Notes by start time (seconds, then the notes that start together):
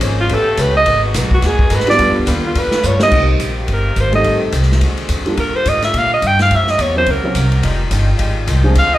Already playing: C#3 F3 G#3 A#3 C4 C#4 G#4
0.01 G#1 A#3 C#4 G#4 C5, kick, hi-hat pedal, ride
0.21 F4
0.29 A1 C#3 A3 B3 C#4 G4 B4, kick, ride
0.34 A4
0.57 C#2 A3 C#4 G4 B4, kick, hi-hat pedal, ride
0.62 B4
0.77 D#5
0.85 G#1 B2 G#3 A#3 B3 F#4 A#4, kick, ride
1.14 B1 G#3 B3 F#4 A#4, kick, snare, hi-hat pedal, ride
1.31 F#4, kick
1.42 D#2 G#3 B3 F#4 A#4, kick, snare, ride
1.47 G#4
1.59 kick
1.70 G#2 G#3 B3 F#4 A#4, kick, hi-hat pedal, ride
1.75 B4
1.80 snare
1.87 G3 B3 D4 F4 B4 D5, snare, ride
1.98 G2 D3 G3 B3 D4 F4 B4, kick, ride
2.08 F2
2.18 D2
2.26 D#2 G3 D4 F4 B4, kick, hi-hat pedal, ride
2.47 F4
2.55 F2 G3 D4 F4 B4, kick, ride
2.59 B4
2.71 muted upright bass stroke, snare
2.82 G2 G3 D4 F4 B4, hi-hat pedal
2.87 C#5
3.00 G3 A#3 C4 D#4 A#4 D#5, snare
3.11 C2 D#3 A#3 C4 G4, kick, crash
3.40 A#1, kick, hi-hat pedal, ride
3.60 F#4
3.68 G1, kick, ride
3.73 A#4
3.96 G#1, kick, hi-hat pedal, ride
4.01 C5
4.12 G3 A3 C4 D#4 A4 D#5, ride
4.24 A1 A3, kick, ride
4.52 C2, kick, hi-hat pedal, ride
4.63 snare
4.72 snare
4.81 D#2 D3 G#3 F#4, kick, ride
4.97 ride
5.09 F2, kick, hi-hat pedal, ride
5.26 G3 A#3 D4 F4 A#4, ride
5.37 G2 G3 A#3 F4 A#4, kick, ride
5.54 C5, muted upright bass stroke
5.66 G#2 D#5, kick, hi-hat pedal, ride
5.82 E5, snare, ride
5.94 A#2, kick, ride
5.98 F5
6.14 D#5
6.22 G2, kick, hi-hat pedal, ride
6.27 G5
6.39 F5, snare, ride
6.51 F#2 C3 F#3 A#3 E4, kick, ride
6.56 E5
6.67 D#5, snare
6.78 E2 C#5, kick, hi-hat pedal, ride
6.95 F#3 C4 C#4 E4 A#4 C5
7.06 C#2, kick, ride
7.11 A#4
7.23 F#3 C4 C#4 E4 A#4
7.35 C2, kick, hi-hat pedal, ride
7.52 ride
7.63 F1 D#3 F3 G3 G#3 D#4 F4 G4, kick, ride
7.91 G1 F3 G#3 D#4 G4, kick, hi-hat pedal, ride
8.18 G#1 F3 G#3 D#4 G4, kick, ride
8.47 C2 F3 G#3 D#4 G4, kick, hi-hat pedal, ride
8.64 F3 G#3 C4 D4 G#4
8.75 D2 D3 G#3 C4 F4 G#4 F5, kick, ride
8.94 D#5